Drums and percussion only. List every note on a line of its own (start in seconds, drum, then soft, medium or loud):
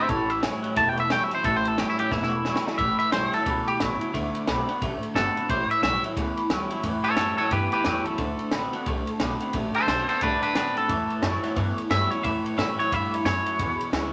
0.09 kick loud
0.09 ride medium
0.30 ride medium
0.43 snare loud
0.43 ride medium
0.64 ride medium
0.76 kick loud
0.76 ride loud
0.97 ride medium
1.10 snare loud
1.10 ride medium
1.31 ride medium
1.44 kick loud
1.44 ride medium
1.65 ride medium
1.78 snare loud
1.78 ride medium
1.99 ride medium
2.11 kick loud
2.11 snare medium
2.23 snare medium
2.45 snare medium
2.56 snare loud
2.67 snare medium
2.78 kick loud
2.78 ride medium
3.00 ride medium
3.12 snare loud
3.12 ride medium
3.33 snare soft
3.33 ride medium
3.46 kick loud
3.46 ride medium
3.68 ride medium
3.80 snare loud
3.80 ride medium
4.01 ride medium
4.14 kick loud
4.14 ride medium
4.35 ride medium
4.47 snare loud
4.47 ride medium
4.69 ride medium
4.82 kick loud
4.82 ride medium
5.03 ride medium
5.16 snare loud
5.16 ride medium
5.37 ride medium
5.49 kick loud
5.49 ride medium
5.71 ride medium
5.83 snare loud
5.83 ride medium
6.04 ride medium
6.17 kick loud
6.17 ride medium
6.37 ride medium
6.50 snare loud
6.50 ride loud
6.70 ride medium
6.83 kick loud
6.83 ride loud
7.04 ride medium
7.17 snare loud
7.17 ride medium
7.38 ride medium
7.51 kick loud
7.51 ride medium
7.72 ride medium
7.84 snare loud
7.84 ride medium
8.05 ride medium
8.18 kick loud
8.18 ride medium
8.39 ride medium
8.51 snare loud
8.51 ride medium
8.73 ride medium
8.86 kick loud
8.86 ride medium
9.07 ride medium
9.20 snare loud
9.20 ride medium
9.40 ride medium
9.53 kick loud
9.53 ride medium
9.74 ride medium
9.88 snare loud
9.88 ride medium
10.09 snare soft
10.09 ride medium
10.21 kick loud
10.21 ride medium
10.43 ride medium
10.55 snare loud
10.55 ride loud
10.77 ride medium
10.89 kick loud
10.89 ride medium
11.10 ride medium
11.23 snare loud
11.23 ride medium
11.44 snare soft
11.44 ride medium
11.56 kick loud
11.56 ride medium
11.78 ride medium
11.91 snare loud
11.91 ride medium
12.11 ride medium
12.24 kick loud
12.24 ride medium
12.46 ride medium
12.59 snare loud
12.59 ride medium
12.80 ride medium
12.92 kick loud
12.92 ride loud
13.14 ride medium
13.26 snare loud
13.26 ride loud
13.46 ride medium
13.59 kick loud
13.59 ride medium
13.81 ride medium
13.93 snare loud
13.93 ride medium